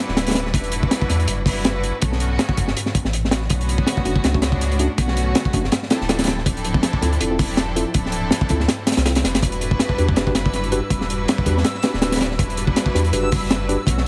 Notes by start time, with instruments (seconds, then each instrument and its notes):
0.00 string section G3 D4 E4 F#4 B4
0.08 sub bass D1, snare
0.17 snare, closed hi-hat
0.27 snare, closed hi-hat
0.31 snare, closed hi-hat
0.35 snare, closed hi-hat
0.46 snare
0.53 sub bass E1, string section G3 D4 E4 F#4 B4, kick, closed hi-hat
0.64 closed hi-hat
0.72 closed hi-hat
0.83 kick
0.91 snare, closed hi-hat
1.02 kick
1.09 sub bass E2, snare, closed hi-hat
1.20 closed hi-hat
1.28 sub bass F#1, closed hi-hat
1.46 string section G3 D4 E4 F#4 B4, kick, open hi-hat
1.65 snare, closed hi-hat
1.83 closed hi-hat
2.02 sub bass B1, string section D3 A3 B3 C#4 F#4, kick, closed hi-hat
2.12 snare
2.20 closed hi-hat
2.39 snare, closed hi-hat
2.49 kick
2.57 sub bass F#1, kick, closed hi-hat
2.67 snare
2.77 closed hi-hat
2.86 snare
2.95 kick, closed hi-hat
3.04 sub bass A1, snare
3.13 closed hi-hat
3.25 snare
3.31 string section D3 A3 B3 C#4 F#4, snare, closed hi-hat
3.42 snare
3.50 sub bass B1, string section D3 A3 B3 C#4 F#4, kick, closed hi-hat
3.61 closed hi-hat
3.69 closed hi-hat
3.78 kick
3.87 snare, closed hi-hat
3.97 kick
4.05 sub bass F#1, tine electric piano A3 C#4 D4 F#4, closed hi-hat
4.16 kick
4.24 sub bass C#2, tine electric piano A3 C#4 D4 F#4, snare, closed hi-hat
4.34 tine electric piano A3 C#4 D4 F#4, kick
4.42 string section A3 B3 C#4 D4 F#4, snare, closed hi-hat
4.52 kick
4.61 snare, closed hi-hat
4.72 closed hi-hat
4.79 tine electric piano A3 C#4 D4 F#4, closed hi-hat
4.98 sub bass B1, string section D3 A3 B3 C#4 F#4, kick, closed hi-hat
5.08 snare
5.17 closed hi-hat
5.35 snare, closed hi-hat
5.45 kick
5.53 sub bass F#1, tine electric piano A3 C#4 D4 F#4, kick, closed hi-hat
5.64 snare
5.72 snare, closed hi-hat
5.83 snare
5.90 string section F3 C4 D4 E4 A4, tine electric piano C4 E4 F4 A4, snare, closed hi-hat
6.01 sub bass D1, snare
6.09 tine electric piano C4 E4 F4 A4, snare, closed hi-hat
6.19 snare, closed hi-hat
6.24 snare, closed hi-hat
6.27 snare, closed hi-hat
6.38 snare
6.46 sub bass D1, string section F3 C4 D4 E4 A4, kick, closed hi-hat
6.57 closed hi-hat
6.64 closed hi-hat
6.74 kick
6.83 snare, closed hi-hat
6.93 kick
7.02 sub bass D2, tine electric piano C4 E4 F4 A4, snare, closed hi-hat
7.13 closed hi-hat
7.20 sub bass E1, tine electric piano C4 E4 F4 A4, closed hi-hat
7.31 tine electric piano C4 E4 F4 A4
7.39 string section F3 C4 D4 E4 A4, kick, open hi-hat
7.57 snare, closed hi-hat
7.76 tine electric piano C4 E4 F4 A4, closed hi-hat
7.94 sub bass D1, string section F3 C4 D4 E4 A4, kick, closed hi-hat
8.06 snare
8.12 closed hi-hat
8.31 snare, closed hi-hat
8.41 kick
8.49 sub bass D2, tine electric piano C4 E4 F4 A4, kick, closed hi-hat
8.60 snare
8.68 snare, closed hi-hat
8.87 snare, closed hi-hat
8.92 snare, closed hi-hat
8.97 sub bass C2, snare, closed hi-hat
9.05 tine electric piano C4 E4 F4 A4, snare, closed hi-hat
9.15 snare, closed hi-hat
9.24 sub bass F1, string section F3 C4 D4 E4 A4, snare, closed hi-hat
9.34 sub bass A1, snare, closed hi-hat
9.42 sub bass E1, string section G3 D4 E4 F#4 B4, synth texture E6, kick, closed hi-hat
9.52 closed hi-hat
9.61 closed hi-hat
9.71 kick
9.79 snare, closed hi-hat
9.89 kick
9.98 sub bass E2, tine electric piano D4 F#4 G4 B4, closed hi-hat
10.09 kick
10.16 sub bass F#1, tine electric piano D4 F#4 G4 B4, snare, closed hi-hat
10.27 tine electric piano D4 F#4 G4 B4, kick
10.35 string section G3 D4 E4 F#4 B4, snare, closed hi-hat
10.46 kick
10.53 snare, closed hi-hat
10.64 closed hi-hat
10.72 tine electric piano D4 F#4 G4 B4, closed hi-hat
10.90 sub bass E1, string section G3 D4 E4 F#4 B4, kick, closed hi-hat
11.01 snare
11.10 closed hi-hat
11.28 snare, closed hi-hat
11.38 kick
11.46 sub bass E2, tine electric piano D4 F#4 G4 B4, kick, closed hi-hat
11.57 snare
11.64 snare, closed hi-hat
11.75 snare
11.83 string section G3 D4 E4 F#4 B4, tine electric piano D4 F#4 G4 B4, snare, closed hi-hat
11.94 sub bass D1, snare
12.02 tine electric piano D4 F#4 G4 B4, snare, closed hi-hat
12.12 snare, closed hi-hat
12.16 snare, closed hi-hat
12.21 snare, closed hi-hat
12.31 snare
12.39 sub bass E1, string section G3 D4 E4 F#4 B4, kick, closed hi-hat
12.50 closed hi-hat
12.57 closed hi-hat
12.67 kick
12.76 snare, closed hi-hat
12.86 kick
12.94 sub bass E2, tine electric piano D4 F#4 G4 B4, snare, closed hi-hat
13.04 closed hi-hat
13.13 sub bass F#1, tine electric piano D4 F#4 G4 B4, closed hi-hat
13.23 tine electric piano D4 F#4 G4 B4
13.32 string section G3 D4 E4 F#4 B4, kick, open hi-hat
13.50 snare, closed hi-hat
13.69 tine electric piano D4 F#4 G4 B4, closed hi-hat
13.87 sub bass B1, string section D3 A3 B3 C#4 F#4, kick, closed hi-hat
13.97 snare